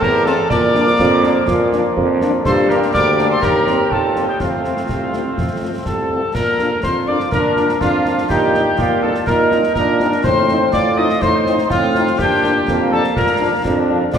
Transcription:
Already playing: trombone section E3 C4
0.01 tuba E2, woodwind section G4, cornet A#4, piccolo A#5, concert bass drum
0.25 french horn section E3 C4, woodwind section F4, cornet A4, piccolo A5, snare
0.50 tuba A#2, trombone section F3 A#3, woodwind section A#4, cornet D5, piccolo D6, concert bass drum, snare, crash
0.75 french horn section F3 A#3 D4, snare
0.87 snare
0.99 tuba F2, concert bass drum, snare
1.23 french horn section F3 A#3 D4, snare
1.48 tuba A#2, concert bass drum, snare
1.72 french horn section F3 A#3 D4, snare
1.97 tuba F2, concert bass drum
2.21 french horn section F3 A#3 D4, snare
2.45 tuba G2, trombone section G3 A#3, woodwind section A4, cornet C5, piccolo C6, concert bass drum, snare, crash
2.69 french horn section G3 A#3 D4, woodwind section G4, cornet A#4, piccolo A#5, snare
2.82 snare
2.93 tuba D2, woodwind section A#4, cornet D5, piccolo D6, concert bass drum, snare
3.18 french horn section G3 A#3 D4, snare
3.30 woodwind section A4, cornet C5, piccolo C6
3.41 tuba D#2, trombone section C4, woodwind section G4, cornet A#4, piccolo A#5, concert bass drum, snare
3.67 french horn section G3 A#3 C4, snare
3.91 tuba D#2, woodwind section F4, cornet A4, piccolo A5, concert bass drum
4.15 french horn section G3 A#3 C4, snare
4.28 woodwind section D#4, cornet G4, piccolo G5
4.40 tuba F2, trombone section A3 C4, woodwind section C4, cornet F4, piccolo F5, concert bass drum, snare, crash
4.64 french horn section F3 A3 C4, snare
4.77 snare
4.89 tuba C2, concert bass drum, snare
5.13 french horn section F3 A3 C4, snare
5.37 tuba F2, concert bass drum, snare
5.62 french horn section F3 A3 C4
5.85 tuba C2, cornet A4, woodwind section A4, piccolo A5, concert bass drum, snare
6.11 french horn section F3 A3 C4
6.34 tuba A#2, cornet A#4, woodwind section A#4, piccolo A#5, concert bass drum, snare, crash
6.59 french horn section F3 A#3 D4, snare
6.83 tuba F2, trombone section F4, cornet C5, woodwind section C5, piccolo C6, concert bass drum, snare
7.07 french horn section F3 A#3 D4, cornet D5, woodwind section D5, piccolo D6
7.20 snare
7.31 tuba A#2, trombone section D4, cornet A#4, woodwind section A#4, piccolo A#5, concert bass drum, snare
7.56 french horn section F3 A#3 D4, snare
7.69 snare
7.80 tuba F2, trombone section D4, woodwind section F4, cornet F4, piccolo F5, concert bass drum, snare
8.05 french horn section F3 A#3 D4, snare
8.18 snare
8.29 tuba A#2, trombone section D#4, cornet G4, woodwind section G4, piccolo G5, concert bass drum, snare, crash
8.54 french horn section G3 C4 D#4, snare
8.78 tuba A#2, trombone section F4, concert bass drum, snare
9.02 french horn section G3 C4 D#4, woodwind section A4, cornet A4, piccolo A5
9.15 snare
9.26 tuba A#2, trombone section D#4, cornet A#4, woodwind section A#4, piccolo A#5, concert bass drum, snare
9.51 french horn section G3 C4 D#4, snare
9.63 snare
9.75 tuba A#2, trombone section D4, cornet A#4, woodwind section A#4, piccolo A#5, concert bass drum, snare
9.99 french horn section G3 C4 D#4, snare
10.12 snare
10.23 tuba A2, trombone section C4, woodwind section C5, cornet C5, piccolo C6, concert bass drum, snare, crash
10.48 french horn section F3 C4 D#4, snare
10.72 tuba A2, trombone section F4, woodwind section D5, cornet D5, piccolo D6, concert bass drum, snare
10.97 french horn section F3 C4 D#4, woodwind section D#5, cornet D#5, piccolo D#6
11.10 snare
11.22 tuba A2, trombone section D#4, woodwind section C5, cornet C5, piccolo C6, concert bass drum, snare
11.46 french horn section F3 C4 D#4, snare
11.58 snare
11.70 tuba A2, trombone section C4, woodwind section F4, cornet F4, piccolo F5, concert bass drum, snare
11.94 french horn section F3 C4 D#4, snare
12.07 snare
12.18 tuba A#2, trombone section D4, cornet G4, woodwind section G4, piccolo G5, concert bass drum, snare, crash
12.43 french horn section F3 A#3 D4, snare
12.67 tuba F2, trombone section A#3, concert bass drum, snare
12.92 french horn section F3 A#3 D4, woodwind section A4, cornet A4, piccolo A5
13.04 snare
13.16 tuba A#2, cornet A#4, woodwind section A#4, piccolo A#5, concert bass drum, snare
13.40 french horn section F3 A#3 D4
13.65 tuba F2, trombone section D4, concert bass drum, snare
13.89 french horn section F3 A#3 D4
14.13 tuba F2, trombone section F4, woodwind section D5, cornet D5, piccolo D6, concert bass drum, snare, crash

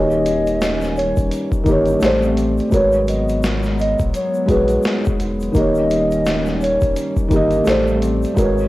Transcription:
Already playing: sub bass D#1, felt piano D#3 A#3 B4 C#5 G#5, analog synth pad D#3 G3 C#4, soft synth lead D#5
0.00 felt piano G4
0.11 shaker
0.26 closed hi-hat, shaker
0.46 closed hi-hat, shaker
0.61 snare, closed hi-hat, shaker
0.81 snare, shaker
0.96 soft synth lead C#5, closed hi-hat, shaker
1.16 sub bass D#1, kick, closed hi-hat, shaker
1.31 closed hi-hat, shaker
1.52 kick, shaker
1.63 sub bass G1, felt piano D#3 A#3, kick, closed hi-hat, shaker
1.69 felt piano G4 C#5
1.86 closed hi-hat, shaker
1.99 sub bass A1, felt piano A3 G4 A4, analog synth pad A3 C4, snare, shaker
2.03 soft synth lead C5, felt piano C5 D5, closed hi-hat
2.22 shaker
2.37 closed hi-hat, shaker
2.57 closed hi-hat, shaker
2.70 sub bass G#1, analog synth pad F#3 G#3 B3, felt piano G#3 F#4 A#4, kick, shaker
2.74 felt piano B4 C#5, soft synth lead C#5, closed hi-hat
2.92 shaker
3.08 soft synth lead D#5, closed hi-hat, shaker
3.28 closed hi-hat, shaker
3.43 snare, closed hi-hat, shaker
3.63 snare, shaker
3.79 soft synth lead D#5, closed hi-hat, shaker
3.99 sub bass B1, kick, closed hi-hat, shaker
4.14 soft synth lead C#5, closed hi-hat, shaker
4.34 shaker
4.46 sub bass A#1, felt piano G#3 F#4 G#4, kick, closed hi-hat, shaker
4.51 soft synth lead B4, felt piano B4 C#5
4.68 closed hi-hat, shaker
4.83 soft synth lead G#4, snare, shaker
4.87 closed hi-hat
5.05 kick, shaker
5.20 sub bass E1, closed hi-hat, shaker
5.40 closed hi-hat, shaker
5.52 sub bass D#1, felt piano D#3 A#3, analog synth pad D#3 G3 C#4, kick, shaker
5.56 felt piano G4 C#5, soft synth lead D#5, closed hi-hat
5.75 shaker
5.90 closed hi-hat, shaker
6.11 closed hi-hat, shaker
6.25 snare, closed hi-hat, shaker
6.46 snare, shaker
6.61 soft synth lead C#5, closed hi-hat, shaker
6.81 sub bass D#1, kick, closed hi-hat, shaker
6.96 closed hi-hat, shaker
7.17 kick, shaker
7.28 sub bass G1, felt piano D#3 A#3, kick, closed hi-hat, shaker
7.33 felt piano G4 D#5
7.51 closed hi-hat, shaker
7.64 sub bass A1, analog synth pad G3 A3 C4, felt piano A3 G4 A4, snare, shaker
7.68 soft synth lead C5, felt piano C5 D5, closed hi-hat
7.87 shaker
8.02 closed hi-hat, shaker
8.22 closed hi-hat, shaker
8.34 sub bass G#1, analog synth pad F#3 G#3 B3, felt piano G#3 F#4 A#4, kick, shaker
8.38 felt piano B4 C#5, soft synth lead C#5, closed hi-hat
8.58 shaker

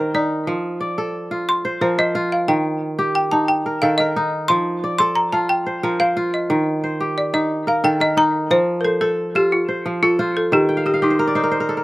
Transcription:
Already playing: kora D#3 D#4 G4 A#4 A5, balafon A#4
0.14 kora D#4, balafon D5
0.47 kora F3
0.81 kora D5
0.98 kora A4
1.31 kora F4
1.49 balafon C6
1.65 kora C5
1.81 kora F3 A#4, balafon C5
1.98 kora C5, balafon D#5
2.15 kora F4
2.32 balafon F5
2.48 kora D#3, balafon G5
2.99 kora G4
3.15 balafon G5
3.31 kora D#4, balafon A5
3.48 balafon G5
3.66 kora A#4
3.82 kora D#3 A4, balafon F5
3.98 kora A#4, balafon D#5
4.16 kora D#4
4.48 kora F3, balafon C6
4.84 kora D5
4.99 kora A4, balafon C6
5.15 balafon A#5
5.33 kora F4, balafon A5
5.49 balafon G5
5.66 kora C5
5.83 kora F3 A#4
6.00 kora C5, balafon F5
6.17 kora F4
6.34 balafon D#5
6.50 kora D#3
6.84 kora C5
7.00 kora G4
7.18 balafon D5
7.33 kora D#4, balafon D#5
7.67 kora A#4, balafon F5
7.84 kora D#3 A4, balafon G5
8.00 kora A#4, balafon D#5
8.17 kora D#4, balafon A#5
8.51 kora F3, balafon C5
8.81 balafon A4 A#4, kora C5
9.01 kora A4, balafon A4
9.35 kora F4, balafon G4
9.52 balafon F4
9.68 kora C5
9.86 kora F3
10.03 balafon F4, kora A4
10.19 kora F4 C5
10.37 balafon A4
10.52 kora D#3, balafon G4
10.69 kora G5
10.77 kora F5
10.86 balafon G4, kora D#5
10.94 kora F5
11.02 balafon D#4, kora G4 D#5
11.10 kora C5
11.19 kora A#4
11.27 kora D5
11.35 kora D#4 C5
11.44 kora A#4
11.51 kora C5
11.60 kora A#4
11.69 kora A4
11.77 kora A#4

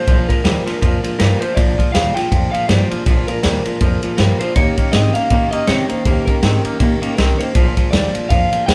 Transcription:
Already playing: clean electric guitar C5
0.07 upright bass A#1, steel-string acoustic guitar A#2 F3 G#3 D4 F4, clean electric guitar A#2 F3, kick, ride
0.28 clean electric guitar A#2 F3 A#4, steel-string acoustic guitar G#3 D4 F4, kick, ride
0.44 upright bass D#2, clean electric guitar A#2 G3, steel-string acoustic guitar A#2 F3 G#3 D4 F4, snare, ride
0.66 clean electric guitar A#2 F3, steel-string acoustic guitar G#3 D4 F4, muted upright bass stroke, snare, ride
0.81 upright bass F2, clean electric guitar A#2 F3, steel-string acoustic guitar F3 G#3 D4 F4, kick, ride
1.03 clean electric guitar A#2 F3, steel-string acoustic guitar G#3 D4 F4, muted upright bass stroke, ride
1.19 upright bass G2, clean electric guitar A#2 G3 A#4, steel-string acoustic guitar A#2 F3 G#3 D4 F4, snare, ride
1.40 clean electric guitar A#2 F3 C5, steel-string acoustic guitar G#3 D4 F4, muted upright bass stroke, ride
1.55 upright bass A#1, clean electric guitar A#2 F3 D5, steel-string acoustic guitar A#2 F3 G#3 D4 F4, kick, ride
1.78 clean electric guitar A#2 F3, steel-string acoustic guitar G#3 D4 F4, kick, ride
1.92 upright bass D#2, clean electric guitar A#2 G3 F5, steel-string acoustic guitar A#2 F3 G#3 D4 F4, snare, ride
2.14 clean electric guitar A#2 F3 G5, steel-string acoustic guitar G#3 D4 F4, snare, ride
2.31 upright bass F2, clean electric guitar A#2 F3, steel-string acoustic guitar F3 G#3 D4 F4, kick, ride
2.51 clean electric guitar A#2 F3 F5, steel-string acoustic guitar D4 F4, muted upright bass stroke, ride
2.56 steel-string acoustic guitar G#3
2.67 upright bass G2, clean electric guitar A#2 G3 D5, steel-string acoustic guitar A#2 F3 G#3 D4 F4, snare, ride
2.89 clean electric guitar A#2 F3 C5, steel-string acoustic guitar G#3 D4 F4, muted upright bass stroke, ride
3.06 upright bass A#1, clean electric guitar A#2 F3, steel-string acoustic guitar A#2 F3 G#3 D4 F4, kick, ride
3.27 clean electric guitar A#2 F3 A#4, steel-string acoustic guitar G#3 D4 F4, muted upright bass stroke, ride
3.43 upright bass D#2, clean electric guitar A#2 G3, steel-string acoustic guitar A#2 F3 G#3 D4 F4, snare, ride
3.65 clean electric guitar A#2 F3, steel-string acoustic guitar G#3 D4 F4, muted upright bass stroke, ride
3.80 upright bass F2, clean electric guitar A#2 F3, steel-string acoustic guitar F3 G#3 D4 F4, kick, ride
4.02 clean electric guitar A#2 F3, steel-string acoustic guitar G#3 D4 F4, muted upright bass stroke, ride
4.17 upright bass G2, steel-string acoustic guitar A#2 F3 G#3 D4 F4, clean electric guitar A#2 G3 A#4, snare, ride
4.40 clean electric guitar A#2 F3 C5, steel-string acoustic guitar G#3 D4 F4, muted upright bass stroke, ride
4.56 upright bass D#2, steel-string acoustic guitar D#3 A#3 C#4 G4, clean electric guitar D#3 A#3 C#5, kick, ride
4.78 clean electric guitar D#3 A#3, steel-string acoustic guitar A#3 C#4 G4, kick, ride
4.92 upright bass G#2, steel-string acoustic guitar D#3 A#3 C#4 G4, clean electric guitar D#3 C4 D#5, snare, ride
5.14 clean electric guitar D#3 A#3 F5, steel-string acoustic guitar A#3 C#4 G4, muted upright bass stroke, ride
5.30 upright bass A#2, clean electric guitar D#3 A#3, steel-string acoustic guitar D#3 A#3 C#4 G4, kick, ride
5.51 clean electric guitar D#3 A#3 D#5, steel-string acoustic guitar A#3 C#4 G4, muted upright bass stroke, ride
5.67 upright bass C3, clean electric guitar D#3 C4 C#5, steel-string acoustic guitar D#3 A#3 C#4 G4, snare, ride
5.89 clean electric guitar D#3 A#3 C5, steel-string acoustic guitar A#3 C#4 G4, muted upright bass stroke, ride
6.05 upright bass D#2, clean electric guitar D#3 A#3, steel-string acoustic guitar D#3 A#3 C#4 G4, kick, ride
6.25 clean electric guitar D#3 A#3 A#4, steel-string acoustic guitar A#3 C#4 G4, kick, ride
6.43 upright bass G#2, steel-string acoustic guitar D#3 A#3 C#4 G4, clean electric guitar D#3 C4, snare, ride
6.65 clean electric guitar D#3 A#3, steel-string acoustic guitar A#3 C#4 G4, muted upright bass stroke, ride
6.79 upright bass A#2, clean electric guitar D#3 A#3, steel-string acoustic guitar D#3 A#3 C#4 G4, kick, ride
7.02 clean electric guitar D#3 A#3, steel-string acoustic guitar A#3 C#4 G4, muted upright bass stroke, ride
7.16 upright bass C2, steel-string acoustic guitar D#3 A#3 C#4 G4, clean electric guitar D#3 C4 A#4, snare, ride
7.38 clean electric guitar D#3 A#3 C5, steel-string acoustic guitar A#3 C#4 G4, ride
7.55 upright bass A#1, steel-string acoustic guitar A#2 F3 G#3 D4 F4, clean electric guitar A#2 F3, kick, ride
7.77 clean electric guitar A#2 F3, steel-string acoustic guitar G#3 D4 F4, kick, ride
7.91 upright bass D#2, clean electric guitar A#2 G3 D5, steel-string acoustic guitar A#2 F3 G#3 D4 F4, snare, ride
8.14 clean electric guitar A#2 F3, steel-string acoustic guitar G#3 D4 F4, muted upright bass stroke, ride
8.29 upright bass F2, clean electric guitar A#2 F3 F5, steel-string acoustic guitar F3 G#3 D4 F4, kick, ride
8.52 clean electric guitar A#2 F3, steel-string acoustic guitar G#3 D4 F4, muted upright bass stroke, ride
8.66 upright bass D#2, clean electric guitar A#2 G3 G5, steel-string acoustic guitar A#2 F3 G#3 D4 F4, snare, ride

